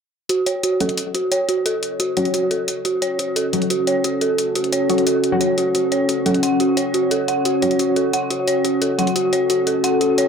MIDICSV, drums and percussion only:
0, 0, Header, 1, 2, 480
1, 0, Start_track
1, 0, Key_signature, 3, "minor"
1, 0, Tempo, 340909
1, 413, Time_signature, 4, 2, 24, 8
1, 14478, End_track
2, 0, Start_track
2, 0, Title_t, "Drums"
2, 414, Note_on_c, 9, 42, 90
2, 554, Note_off_c, 9, 42, 0
2, 654, Note_on_c, 9, 42, 66
2, 794, Note_off_c, 9, 42, 0
2, 893, Note_on_c, 9, 42, 89
2, 1034, Note_off_c, 9, 42, 0
2, 1133, Note_on_c, 9, 42, 65
2, 1253, Note_off_c, 9, 42, 0
2, 1253, Note_on_c, 9, 42, 37
2, 1373, Note_off_c, 9, 42, 0
2, 1373, Note_on_c, 9, 42, 94
2, 1514, Note_off_c, 9, 42, 0
2, 1613, Note_on_c, 9, 42, 64
2, 1754, Note_off_c, 9, 42, 0
2, 1853, Note_on_c, 9, 42, 95
2, 1994, Note_off_c, 9, 42, 0
2, 2093, Note_on_c, 9, 42, 67
2, 2233, Note_off_c, 9, 42, 0
2, 2333, Note_on_c, 9, 42, 85
2, 2474, Note_off_c, 9, 42, 0
2, 2573, Note_on_c, 9, 42, 62
2, 2713, Note_off_c, 9, 42, 0
2, 2812, Note_on_c, 9, 42, 86
2, 2953, Note_off_c, 9, 42, 0
2, 3052, Note_on_c, 9, 42, 66
2, 3172, Note_off_c, 9, 42, 0
2, 3172, Note_on_c, 9, 42, 34
2, 3292, Note_off_c, 9, 42, 0
2, 3292, Note_on_c, 9, 42, 94
2, 3433, Note_off_c, 9, 42, 0
2, 3533, Note_on_c, 9, 42, 63
2, 3673, Note_off_c, 9, 42, 0
2, 3772, Note_on_c, 9, 42, 94
2, 3913, Note_off_c, 9, 42, 0
2, 4012, Note_on_c, 9, 42, 62
2, 4153, Note_off_c, 9, 42, 0
2, 4252, Note_on_c, 9, 42, 83
2, 4393, Note_off_c, 9, 42, 0
2, 4493, Note_on_c, 9, 42, 62
2, 4634, Note_off_c, 9, 42, 0
2, 4732, Note_on_c, 9, 42, 85
2, 4873, Note_off_c, 9, 42, 0
2, 4972, Note_on_c, 9, 42, 63
2, 5093, Note_off_c, 9, 42, 0
2, 5093, Note_on_c, 9, 42, 33
2, 5213, Note_off_c, 9, 42, 0
2, 5213, Note_on_c, 9, 42, 84
2, 5354, Note_off_c, 9, 42, 0
2, 5453, Note_on_c, 9, 42, 61
2, 5594, Note_off_c, 9, 42, 0
2, 5692, Note_on_c, 9, 42, 85
2, 5833, Note_off_c, 9, 42, 0
2, 5933, Note_on_c, 9, 42, 59
2, 6074, Note_off_c, 9, 42, 0
2, 6173, Note_on_c, 9, 42, 81
2, 6314, Note_off_c, 9, 42, 0
2, 6413, Note_on_c, 9, 42, 60
2, 6533, Note_off_c, 9, 42, 0
2, 6533, Note_on_c, 9, 42, 34
2, 6653, Note_off_c, 9, 42, 0
2, 6653, Note_on_c, 9, 42, 87
2, 6794, Note_off_c, 9, 42, 0
2, 6893, Note_on_c, 9, 42, 59
2, 7013, Note_off_c, 9, 42, 0
2, 7013, Note_on_c, 9, 42, 34
2, 7133, Note_off_c, 9, 42, 0
2, 7133, Note_on_c, 9, 42, 86
2, 7274, Note_off_c, 9, 42, 0
2, 7373, Note_on_c, 9, 42, 60
2, 7514, Note_off_c, 9, 42, 0
2, 7613, Note_on_c, 9, 42, 88
2, 7754, Note_off_c, 9, 42, 0
2, 7853, Note_on_c, 9, 42, 59
2, 7994, Note_off_c, 9, 42, 0
2, 8092, Note_on_c, 9, 42, 82
2, 8233, Note_off_c, 9, 42, 0
2, 8333, Note_on_c, 9, 42, 59
2, 8473, Note_off_c, 9, 42, 0
2, 8573, Note_on_c, 9, 42, 84
2, 8714, Note_off_c, 9, 42, 0
2, 8813, Note_on_c, 9, 42, 61
2, 8933, Note_off_c, 9, 42, 0
2, 8933, Note_on_c, 9, 42, 34
2, 9053, Note_off_c, 9, 42, 0
2, 9053, Note_on_c, 9, 42, 90
2, 9194, Note_off_c, 9, 42, 0
2, 9293, Note_on_c, 9, 42, 59
2, 9434, Note_off_c, 9, 42, 0
2, 9533, Note_on_c, 9, 42, 86
2, 9674, Note_off_c, 9, 42, 0
2, 9773, Note_on_c, 9, 42, 60
2, 9914, Note_off_c, 9, 42, 0
2, 10013, Note_on_c, 9, 42, 86
2, 10154, Note_off_c, 9, 42, 0
2, 10253, Note_on_c, 9, 42, 60
2, 10394, Note_off_c, 9, 42, 0
2, 10493, Note_on_c, 9, 42, 91
2, 10634, Note_off_c, 9, 42, 0
2, 10734, Note_on_c, 9, 42, 60
2, 10854, Note_off_c, 9, 42, 0
2, 10854, Note_on_c, 9, 42, 37
2, 10973, Note_off_c, 9, 42, 0
2, 10973, Note_on_c, 9, 42, 86
2, 11114, Note_off_c, 9, 42, 0
2, 11213, Note_on_c, 9, 42, 62
2, 11354, Note_off_c, 9, 42, 0
2, 11453, Note_on_c, 9, 42, 93
2, 11594, Note_off_c, 9, 42, 0
2, 11693, Note_on_c, 9, 42, 64
2, 11834, Note_off_c, 9, 42, 0
2, 11933, Note_on_c, 9, 42, 87
2, 12074, Note_off_c, 9, 42, 0
2, 12173, Note_on_c, 9, 42, 66
2, 12314, Note_off_c, 9, 42, 0
2, 12413, Note_on_c, 9, 42, 92
2, 12554, Note_off_c, 9, 42, 0
2, 12653, Note_on_c, 9, 42, 65
2, 12773, Note_off_c, 9, 42, 0
2, 12773, Note_on_c, 9, 42, 36
2, 12893, Note_off_c, 9, 42, 0
2, 12893, Note_on_c, 9, 42, 91
2, 13034, Note_off_c, 9, 42, 0
2, 13133, Note_on_c, 9, 42, 64
2, 13274, Note_off_c, 9, 42, 0
2, 13372, Note_on_c, 9, 42, 94
2, 13513, Note_off_c, 9, 42, 0
2, 13613, Note_on_c, 9, 42, 65
2, 13754, Note_off_c, 9, 42, 0
2, 13853, Note_on_c, 9, 42, 93
2, 13994, Note_off_c, 9, 42, 0
2, 14093, Note_on_c, 9, 42, 67
2, 14234, Note_off_c, 9, 42, 0
2, 14333, Note_on_c, 9, 42, 92
2, 14474, Note_off_c, 9, 42, 0
2, 14478, End_track
0, 0, End_of_file